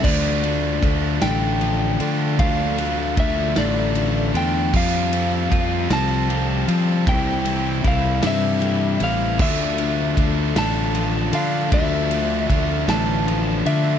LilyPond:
<<
  \new Staff \with { instrumentName = "Electric slide guitar" } { \time 6/8 \key d \minor \tempo 4. = 51 d''4. g''4. | f''4 e''8 d''4 g''8 | f''4. a''4. | g''4 f''8 e''4 f''8 |
e''4. a''4 f''8 | e''4. a''4 e''8 | }
  \new Staff \with { instrumentName = "Distorted electric guitar" } { \time 6/8 \key d \minor <d a d' f'>8 <a d' f'>8 <d a d' f'>8 <d a d' f'>4 <a d' f'>8 | <d a d' f'>8 <a d' f'>8 <d a d' f'>8 <d a d' f'>4 <a d' f'>8 | <f g c' f'>8 <g c' f'>8 <f g c' f'>8 <f g c' f'>4 <g c' f'>8 | <c e g c' e'>8 <g c' e'>8 <e g c' e'>8 <c e g c' e'>4 <g c' e'>8 |
<d a d' f'>8 <a d' f'>8 <d a d' f'>8 <d a d' f'>4 <a d' f'>8 | <d a d' f'>8 <a d' f'>8 <d a d' f'>8 <d a d' f'>4 <a d' f'>8 | }
  \new Staff \with { instrumentName = "Overdriven electric guitar" } { \time 6/8 \key d \minor <d a d' f'>8 <a d' f'>8 <d a d' f'>8 <d a d' f'>8 <d a d' f'>4 | <d a d' f'>8 <a d' f'>8 <d a d' f'>8 <d a d' f'>8 <d a d' f'>4 | <f g c' f'>8 <g c' f'>8 <f g c' f'>8 <f g c' f'>8 <f g c' f'>4 | <c e g c' e'>8 <g c' e'>8 <e g c' e'>8 <c e g c' e'>8 <e g c' e'>4 |
<d a d' f'>8 <a d' f'>8 <d a d' f'>8 <d a d' f'>8 <d a d' f'>4 | <d a d' f'>8 <a d' f'>8 <d a d' f'>8 <d a d' f'>8 <d a d' f'>4 | }
  \new Staff \with { instrumentName = "Clean electric guitar" } { \clef bass \time 6/8 \key d \minor d4. a8 f8 d8 | d4. a4 d8 | f4 f'8 c'8 g8 f8 | c4 e'8 d'8 g8 e8 |
d4. a8 f8 d8 | d4. a8 f8 d8 | }
  \new Staff \with { instrumentName = "Fingered electric bass" } { \clef bass \time 6/8 \key d \minor d,4 d,8 a,,4 d8 | d,4 d,8 a,,4 e,8 | f,4 f,8 c,4 f8 | c,4 c,8 g,4 a,,8 |
d,4 d,8 a,,4 d8 | d,4 d,8 a,,4 d8 | }
  \new DrumStaff \with { instrumentName = "Drums" } \drummode { \time 6/8 <cymc bd>8 cymr8 <bd cymr>8 <cymr sn>8 cymr8 cymr8 | <bd cymr>8 cymr8 <bd cymr>8 <cymr sn>8 cymr8 cymr8 | <cymc bd>8 cymr8 <bd cymr>8 <cymr sn>8 cymr8 cymr8 | <bd cymr>8 cymr8 <bd cymr>8 <cymr sn>8 cymr8 cymr8 |
<cymc bd>8 cymr8 <bd cymr>8 <cymr sn>8 cymr8 cymr8 | <bd cymr>8 cymr8 <bd cymr>8 <cymr sn>8 cymr8 cymr8 | }
>>